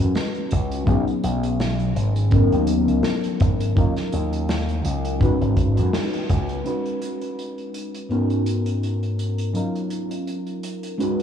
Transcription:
Already playing: fm electric piano G#3 C#4 D#4 F#4 B4
0.00 slap bass F#2
0.15 snare, closed hi-hat
0.35 closed hi-hat
0.51 slap bass C#2, kick, closed hi-hat
0.72 closed hi-hat
0.86 slap bass B1, fm electric piano F#3 B3 C#4 D#4 G#4, kick, closed hi-hat
1.08 closed hi-hat
1.24 slap bass B1, closed hi-hat
1.43 closed hi-hat
1.60 snare, closed hi-hat
1.79 closed hi-hat
1.96 slap bass G#1, closed hi-hat
2.16 closed hi-hat
2.30 fm electric piano F#3 B3 C#4 D#4 A#4, kick, closed hi-hat
2.52 slap bass D#2, closed hi-hat
2.67 closed hi-hat
2.88 slap bass C#2, closed hi-hat
3.03 snare, closed hi-hat
3.24 closed hi-hat
3.40 slap bass G#1, kick, closed hi-hat
3.60 closed hi-hat
3.75 slap bass D#2, fm electric piano F#3 C#4 D#4 F4 A#4, kick, closed hi-hat
3.96 snare, closed hi-hat
4.12 slap bass D#2, closed hi-hat
4.33 closed hi-hat
4.49 snare, closed hi-hat
4.69 closed hi-hat
4.85 slap bass C#2, closed hi-hat
5.05 closed hi-hat
5.20 fm electric piano G#3 C#4 D#4 F#4 B4, kick, closed hi-hat
5.41 slap bass G#1, closed hi-hat
5.57 kick, closed hi-hat
5.77 slap bass F#2, closed hi-hat
5.93 snare, closed hi-hat
6.13 closed hi-hat
6.29 slap bass C#2, kick, closed hi-hat
6.49 closed hi-hat
6.64 fm electric piano G#3 C#4 D#4 F#4 B4, closed hi-hat
6.86 closed hi-hat
7.02 closed hi-hat
7.21 closed hi-hat
7.39 closed hi-hat
7.58 closed hi-hat
7.74 closed hi-hat
7.94 closed hi-hat
8.09 fm electric piano G#2 B3 C#4 D#4 F#4 A#4, closed hi-hat
8.30 closed hi-hat
8.46 closed hi-hat
8.66 closed hi-hat
8.83 closed hi-hat
9.03 closed hi-hat
9.19 closed hi-hat
9.38 closed hi-hat
9.53 fm electric piano F#3 C#4 D#4 F4 A#4, closed hi-hat
9.75 closed hi-hat
9.90 closed hi-hat
10.11 closed hi-hat
10.27 closed hi-hat
10.47 closed hi-hat
10.63 closed hi-hat
10.83 closed hi-hat
10.98 fm electric piano G#3 C#4 D#4 F#4 B4, closed hi-hat

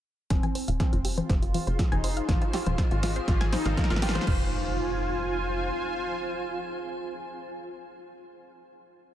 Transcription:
0.30 analog synth bass F1, synth bell C4, supersaw synth C4, synth arpeggio sound F4, ambient pad F4, analog synth pad G#4 F5 C6, kick, snare, closed hi-hat, riser
0.36 ambient pad C5
0.43 synth arpeggio sound G#5, closed hi-hat, low conga
0.55 synth arpeggio sound C5, open hi-hat
0.68 analog synth bass D#1, synth arpeggio sound F5, closed hi-hat
0.80 synth bell C4, supersaw synth C4, synth arpeggio sound F4, kick, snare, closed hi-hat, low conga
0.93 analog synth bass F1, synth arpeggio sound F4, ambient pad G#5, closed hi-hat
1.05 synth arpeggio sound G4, open hi-hat
1.18 synth arpeggio sound C5, closed hi-hat, low conga
1.29 analog synth bass F1, synth arpeggio sound C5, kick, snare, closed hi-hat
1.42 synth arpeggio sound F4, closed hi-hat
1.54 synth arpeggio sound F4, open hi-hat, low conga
1.67 analog synth bass F1, synth arpeggio sound C5, closed hi-hat
1.79 synth arpeggio sound F4, kick, snare, closed hi-hat
1.92 analog synth bass F1, synth bell D#4, supersaw synth D#4, synth arpeggio sound G#5, closed hi-hat, low conga
2.04 synth arpeggio sound C5, open hi-hat
2.17 synth arpeggio sound F5, closed hi-hat
2.28 analog synth bass G#1, ambient pad D#4, synth bell F4, supersaw synth F4, synth arpeggio sound F4, analog synth pad D#5, kick, snare, closed hi-hat, low conga
2.42 synth arpeggio sound F4, closed hi-hat
2.53 synth bell F4, supersaw synth F4, synth arpeggio sound G4, snare, open hi-hat
2.66 analog synth bass D#1, synth arpeggio sound C5, closed hi-hat, low conga
2.78 synth arpeggio sound C5, kick, snare, closed hi-hat
2.91 analog synth bass G#1, synth arpeggio sound F4, synth bell F4, supersaw synth F4, closed hi-hat
3.03 synth arpeggio sound F4, snare, open hi-hat, low conga
3.16 synth arpeggio sound C5, closed hi-hat
3.28 analog synth bass G#1, supersaw synth F4, synth arpeggio sound F4, synth bell F4, kick, snare, closed hi-hat
3.41 synth arpeggio sound G#5, snare, closed hi-hat, low conga
3.53 supersaw synth D#4, synth bell D#4, synth arpeggio sound C5, snare, open hi-hat
3.65 analog synth bass G#1, synth arpeggio sound F5, snare, closed hi-hat
3.77 synth arpeggio sound F4, kick, snare, closed hi-hat, low conga
3.84 snare
3.90 analog synth bass G#1, synth arpeggio sound F4, snare, closed hi-hat
3.96 snare
4.02 synth bell F4, supersaw synth F4, synth arpeggio sound G4, snare, open hi-hat
4.09 snare
4.15 synth arpeggio sound C5, snare, closed hi-hat, low conga
4.21 snare
4.27 analog synth bass F1, analog synth pad F4 C5 G#5, ambient pad F4, synth bell F4, supersaw synth F4, synth arpeggio sound F4, kick, crash, impact
4.35 ambient pad C5
4.42 ambient pad G#5

